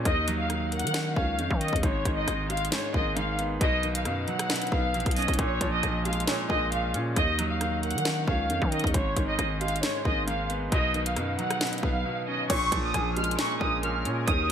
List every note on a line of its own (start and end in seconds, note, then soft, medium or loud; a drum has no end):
0.05 0.85 D#2 loud
0.05 0.48 D#3 medium
0.05 0.37 D#5 loud
0.05 kick loud
0.05 closed hi-hat medium
0.28 1.39 F#3 medium
0.28 closed hi-hat medium
0.39 0.70 F5 medium
0.50 0.93 D#3 medium
0.50 cross-stick medium
0.50 closed hi-hat medium
0.72 1.83 A#3 medium
0.72 1.14 F#5 medium
0.72 closed hi-hat soft
0.79 closed hi-hat medium
0.84 1.15 D#3 loud
0.84 closed hi-hat medium
0.94 1.37 D#3 medium
0.94 snare loud
0.94 closed hi-hat medium
1.16 1.40 C#2 loud
1.16 1.83 C#4 medium
1.16 1.58 F5 medium
1.16 kick loud
1.39 1.50 F2 loud
1.39 1.83 D#3 medium
1.39 closed hi-hat medium
1.51 1.72 D#3 loud
1.51 kick loud
1.61 1.83 D#4 medium
1.61 1.81 D#5 medium
1.61 closed hi-hat medium
1.68 closed hi-hat medium
1.73 1.83 D#2 loud
1.73 kick medium
1.73 closed hi-hat medium
1.83 2.04 G#1 loud
1.83 2.26 G#2 medium
1.83 2.15 C#5 loud
1.83 kick loud
1.83 closed hi-hat medium
2.05 2.27 G#1 loud
2.05 3.16 D#3 medium
2.05 kick medium
2.05 closed hi-hat medium
2.17 2.48 D#5 medium
2.28 2.70 G#1 loud
2.28 2.71 G#2 medium
2.28 cross-stick medium
2.28 closed hi-hat medium
2.50 3.61 G#3 medium
2.50 2.70 F5 medium
2.50 closed hi-hat medium
2.57 closed hi-hat medium
2.65 closed hi-hat medium
2.72 3.15 G#2 medium
2.72 2.92 C#5 medium
2.72 snare loud
2.72 closed hi-hat medium
2.94 3.58 G#1 loud
2.94 3.61 A#3 medium
2.94 3.15 D#5 medium
2.94 kick loud
3.16 3.61 G#2 medium
3.16 3.37 F5 medium
3.16 closed hi-hat medium
3.39 3.61 B3 medium
3.39 closed hi-hat medium
3.61 4.07 B1 loud
3.61 4.04 B2 loud
3.61 3.93 D#5 loud
3.61 kick loud
3.61 closed hi-hat medium
3.83 4.94 D#3 medium
3.83 closed hi-hat medium
3.94 4.25 F5 medium
3.94 closed hi-hat medium
4.05 4.27 F#2 loud
4.05 4.48 B2 medium
4.05 cross-stick medium
4.05 closed hi-hat medium
4.27 5.39 F#3 medium
4.27 4.69 F#5 medium
4.27 closed hi-hat soft
4.39 cross-stick loud
4.39 closed hi-hat medium
4.50 4.93 B2 medium
4.50 snare loud
4.50 closed hi-hat medium
4.56 closed hi-hat medium
4.62 closed hi-hat medium
4.67 closed hi-hat soft
4.72 4.96 B1 loud
4.72 5.39 B3 medium
4.72 5.14 F5 medium
4.72 kick loud
4.94 5.05 A#1 loud
4.94 5.39 B2 medium
4.94 closed hi-hat soft
5.00 closed hi-hat medium
5.06 5.27 B1 loud
5.06 kick loud
5.06 closed hi-hat medium
5.11 closed hi-hat medium
5.16 5.39 C#4 medium
5.16 5.37 D#5 medium
5.16 closed hi-hat soft
5.16 open hi-hat medium
5.22 closed hi-hat soft
5.28 5.38 B1 loud
5.28 kick medium
5.28 closed hi-hat medium
5.33 closed hi-hat medium
5.39 5.60 A#1 loud
5.39 5.82 A#2 loud
5.39 5.71 C#5 loud
5.39 kick loud
5.39 closed hi-hat medium
5.61 5.82 A#1 loud
5.61 6.72 F3 medium
5.61 kick medium
5.61 closed hi-hat medium
5.73 6.04 D#5 medium
5.83 6.26 A#1 loud
5.83 6.26 A#2 medium
5.83 cross-stick medium
5.83 closed hi-hat medium
6.05 7.17 G#3 medium
6.05 6.26 F5 medium
6.05 closed hi-hat medium
6.13 closed hi-hat medium
6.20 closed hi-hat medium
6.27 6.71 A#2 medium
6.27 6.48 C#5 medium
6.27 snare loud
6.27 closed hi-hat medium
6.50 6.96 A#1 loud
6.50 7.17 A#3 medium
6.50 6.70 D#5 medium
6.50 kick loud
6.72 7.16 A#2 medium
6.72 6.93 F5 medium
6.72 closed hi-hat medium
6.94 7.15 A#2 loud
6.94 7.17 C#4 medium
6.94 closed hi-hat medium
7.16 7.96 D#2 loud
7.16 7.59 D#3 medium
7.16 7.48 D#5 loud
7.16 kick loud
7.16 closed hi-hat medium
7.39 8.50 F#3 medium
7.39 closed hi-hat medium
7.51 7.81 F5 medium
7.61 8.04 D#3 medium
7.61 cross-stick medium
7.61 closed hi-hat medium
7.83 8.94 A#3 medium
7.83 8.25 F#5 medium
7.83 closed hi-hat soft
7.91 closed hi-hat medium
7.95 8.26 D#3 loud
7.95 closed hi-hat medium
8.05 8.48 D#3 medium
8.05 snare loud
8.05 closed hi-hat medium
8.27 8.51 C#2 loud
8.27 8.94 C#4 medium
8.27 8.69 F5 medium
8.27 kick loud
8.50 8.61 F2 loud
8.50 8.94 D#3 medium
8.50 closed hi-hat medium
8.62 8.83 D#3 loud
8.62 kick medium
8.72 8.94 D#4 medium
8.72 8.92 D#5 medium
8.72 closed hi-hat medium
8.79 closed hi-hat medium
8.84 8.94 D#2 loud
8.84 kick loud
8.84 closed hi-hat medium
8.94 9.16 G#1 loud
8.94 9.37 G#2 medium
8.94 9.26 C#5 medium
8.94 kick loud
8.94 closed hi-hat medium
9.16 9.38 G#1 loud
9.16 10.28 D#3 medium
9.16 kick medium
9.16 closed hi-hat medium
9.28 9.59 D#5 medium
9.39 9.81 G#1 loud
9.39 9.82 G#2 medium
9.39 cross-stick medium
9.39 closed hi-hat medium
9.61 10.72 G#3 medium
9.61 9.81 F5 medium
9.61 closed hi-hat medium
9.68 closed hi-hat medium
9.76 closed hi-hat medium
9.83 10.26 G#2 medium
9.83 10.04 C#5 medium
9.83 snare loud
9.83 closed hi-hat medium
10.05 10.69 G#1 loud
10.05 10.72 A#3 medium
10.05 10.26 D#5 medium
10.05 kick loud
10.28 10.72 G#2 medium
10.28 10.48 F5 medium
10.28 closed hi-hat medium
10.50 10.72 B3 medium
10.50 closed hi-hat medium
10.72 11.18 B1 loud
10.72 11.15 B2 loud
10.72 11.04 D#5 loud
10.72 kick loud
10.72 closed hi-hat medium
10.94 12.05 D#3 medium
10.94 closed hi-hat soft
11.05 11.36 F5 medium
11.05 closed hi-hat medium
11.16 11.38 F#2 loud
11.16 11.59 B2 medium
11.16 cross-stick medium
11.16 closed hi-hat medium
11.39 12.50 F#3 medium
11.39 11.80 F#5 medium
11.39 closed hi-hat soft
11.51 cross-stick loud
11.51 closed hi-hat medium
11.61 12.04 B2 medium
11.61 snare loud
11.61 closed hi-hat medium
11.67 closed hi-hat medium
11.73 closed hi-hat medium
11.78 closed hi-hat soft
11.83 12.04 B1 loud
11.83 12.50 B3 medium
11.83 12.25 F5 medium
11.83 kick loud
12.05 12.50 B2 medium
12.27 12.50 C#4 medium
12.27 12.48 D#5 medium
12.50 12.71 A#1 loud
12.50 12.93 A#2 loud
12.50 14.26 F3 medium
12.50 14.52 C#4 medium
12.50 14.26 G#4 medium
12.50 14.52 A#4 medium
12.50 12.92 C#5 loud
12.50 12.82 C#6 loud
12.50 kick loud
12.50 closed hi-hat medium
12.50 crash loud
12.72 12.93 A#1 loud
12.72 13.83 F3 medium
12.72 kick loud
12.72 closed hi-hat medium
12.84 13.15 D#6 medium
12.94 13.37 A#1 loud
12.94 13.37 A#2 medium
12.94 13.79 G#5 medium
12.94 cross-stick medium
12.94 closed hi-hat medium
13.16 14.28 G#3 medium
13.16 13.37 F6 medium
13.16 closed hi-hat medium
13.24 closed hi-hat medium
13.31 closed hi-hat medium
13.38 13.82 A#2 loud
13.38 13.59 C#6 medium
13.38 snare loud
13.38 closed hi-hat medium
13.61 14.07 A#1 loud
13.61 14.28 A#3 medium
13.61 13.81 D#6 medium
13.61 kick loud
13.83 14.28 A#2 medium
13.83 14.04 F6 medium
13.83 closed hi-hat medium
14.05 14.26 A#2 loud
14.05 14.28 C#4 medium
14.05 closed hi-hat medium
14.27 14.52 D#2 loud
14.27 14.52 D#3 medium
14.27 14.52 F#4 medium
14.27 14.52 D#6 loud
14.27 kick loud
14.27 closed hi-hat medium